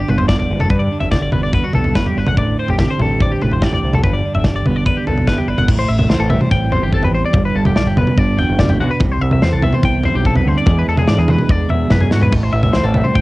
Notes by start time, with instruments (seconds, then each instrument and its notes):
Already playing: clean electric guitar D3 D4 F#4
0.08 fingered electric bass G1, clean electric guitar G2 B3 B4, mid tom
0.18 clean electric guitar C5, floor tom
0.28 clean electric guitar F#4 D5, kick, snare
0.39 fingered electric bass G1, clean electric guitar D5, floor tom
0.50 fingered electric bass F#1, clean electric guitar B3
0.60 clean electric guitar D4 A4, floor tom, mid tom
0.70 fingered electric bass G2, clean electric guitar G2 B4, kick, floor tom
0.79 clean electric guitar D5
0.92 clean electric guitar D4
1.01 fingered electric bass G1, clean electric guitar E5, floor tom
1.12 clean electric guitar D3 F#4 D5, kick, snare, floor tom, mid tom
1.23 clean electric guitar D5
1.32 fingered electric bass G1, clean electric guitar B3 B4, floor tom, mid tom
1.43 clean electric guitar D5
1.53 clean electric guitar B3 B4, kick, floor tom
1.64 clean electric guitar D4 F#4
1.73 fingered electric bass B1, clean electric guitar G2 B3 A4, floor tom, mid tom
1.84 floor tom
1.95 fingered electric bass G1, clean electric guitar F#4 B4, kick, snare
2.06 clean electric guitar G4, floor tom
2.17 fingered electric bass G1, clean electric guitar D4 B4
2.26 fingered electric bass G#1, clean electric guitar F#5, floor tom, mid tom
2.37 fingered electric bass A1, clean electric guitar A2 D5, kick, floor tom
2.59 clean electric guitar C4 C5
2.68 fingered electric bass A1, clean electric guitar G4, floor tom
2.78 clean electric guitar D3 G4, kick, snare, floor tom, mid tom
2.90 clean electric guitar C5
2.99 fingered electric bass A1, clean electric guitar G3 A4, floor tom, mid tom
3.20 clean electric guitar C4 D5, kick, floor tom
3.32 clean electric guitar G4
3.42 fingered electric bass A1, clean electric guitar A2 G3 B4, mid tom
3.51 clean electric guitar C5, floor tom
3.62 clean electric guitar G4 D5, kick, snare
3.73 fingered electric bass A1, clean electric guitar D5, floor tom
3.83 fingered electric bass C2, clean electric guitar C4
3.93 clean electric guitar A4, floor tom, mid tom
4.03 fingered electric bass G1, clean electric guitar G2 B4, kick, floor tom
4.13 clean electric guitar D5
4.26 clean electric guitar D4
4.35 fingered electric bass G1, clean electric guitar E5, floor tom
4.44 clean electric guitar D3 G4 D5, kick, snare, floor tom, mid tom
4.56 clean electric guitar D5
4.66 fingered electric bass G1, clean electric guitar B3 B4, floor tom, mid tom
4.76 clean electric guitar D5
4.86 clean electric guitar D4 B4, kick, floor tom
4.97 clean electric guitar G4
5.07 fingered electric bass B1, clean electric guitar G2 B3 A4, floor tom, mid tom
5.17 floor tom
5.27 fingered electric bass G1, clean electric guitar E4 B4, kick, snare
5.38 clean electric guitar G4, floor tom
5.48 fingered electric bass G1, clean electric guitar D4 B4
5.58 fingered electric bass G1, clean electric guitar F#5, floor tom, mid tom
5.68 fingered electric bass A1, clean electric guitar A2, kick, floor tom, crash
5.79 clean electric guitar C5
5.89 fingered electric bass A1, clean electric guitar E5
5.99 clean electric guitar E5, floor tom, mid tom
6.09 fingered electric bass C2, clean electric guitar E3 C4 C5, snare
6.20 fingered electric bass A1, clean electric guitar A4
6.30 clean electric guitar G3 E5, floor tom, mid tom
6.41 clean electric guitar C5, mid tom
6.51 fingered electric bass A1, clean electric guitar C4 G5, kick
6.72 clean electric guitar E2 G4 C5, floor tom
6.82 fingered electric bass G1, clean electric guitar G4
6.92 clean electric guitar C4 A4, kick
7.03 clean electric guitar B4, floor tom
7.14 fingered electric bass A1, clean electric guitar C5
7.26 clean electric guitar D5
7.33 fingered electric bass G1, clean electric guitar G2, kick, floor tom
7.45 clean electric guitar B4
7.55 fingered electric bass G1, clean electric guitar A4
7.65 clean electric guitar G4, floor tom, mid tom
7.76 fingered electric bass B1, clean electric guitar D3 D4 D5, snare
7.86 fingered electric bass G1, clean electric guitar G4
7.97 clean electric guitar B3 B4, floor tom, mid tom
8.07 mid tom
8.17 fingered electric bass G1, clean electric guitar D4 D5, kick
8.38 clean electric guitar F#4 G5, floor tom
8.49 fingered electric bass F#1
8.59 clean electric guitar A2 D5, kick, snare, mid tom
8.69 clean electric guitar G4, floor tom
8.80 fingered electric bass B1, clean electric guitar B2 F#4
8.91 clean electric guitar B4
9.00 fingered electric bass C2, clean electric guitar C3, kick, floor tom
9.12 clean electric guitar C5
9.21 fingered electric bass C2, clean electric guitar E5
9.31 clean electric guitar E5, floor tom, mid tom
9.42 fingered electric bass E2, clean electric guitar E3 C4 C5, snare
9.53 fingered electric bass C2, clean electric guitar A4
9.63 clean electric guitar B3 E5, floor tom, mid tom
9.73 clean electric guitar C5, mid tom
9.83 fingered electric bass C2, clean electric guitar C4 G5, kick
10.04 clean electric guitar G2 E4 C5, floor tom
10.15 fingered electric bass B1, clean electric guitar G4
10.25 clean electric guitar C3 A4, kick
10.36 clean electric guitar B4, floor tom
10.46 fingered electric bass D2, clean electric guitar D3 C5
10.58 clean electric guitar D5
10.66 clean electric guitar E2 E3 G#3 D4 G#4, fingered electric bass E2, kick, floor tom
10.79 clean electric guitar B4
10.88 fingered electric bass E2, clean electric guitar A4
10.97 clean electric guitar G#4, floor tom, mid tom
11.08 fingered electric bass G#2, clean electric guitar E3 D4 D5, snare
11.19 fingered electric bass E2, clean electric guitar G#4
11.28 clean electric guitar G#3 B4, floor tom, mid tom
11.39 mid tom
11.49 fingered electric bass E2, clean electric guitar D4 D5, kick
11.70 fingered electric bass E2, clean electric guitar B2 G#4 E5, floor tom
11.90 fingered electric bass F#2, clean electric guitar F#2 B4, kick, snare, mid tom
12.01 clean electric guitar G#4, floor tom
12.11 clean electric guitar G#2 F#4, fingered electric bass G#2, snare
12.22 clean electric guitar B4, floor tom
12.32 fingered electric bass A1, clean electric guitar A2, kick, floor tom, splash
12.43 clean electric guitar C5
12.53 fingered electric bass A1, clean electric guitar E5
12.63 clean electric guitar E5, floor tom, mid tom
12.73 fingered electric bass C2, clean electric guitar E3 C4 C5, snare
12.84 fingered electric bass A1, clean electric guitar A4
12.94 clean electric guitar G3 E5, floor tom, mid tom
13.04 clean electric guitar C5, mid tom
13.15 fingered electric bass A1, clean electric guitar C4 G5, kick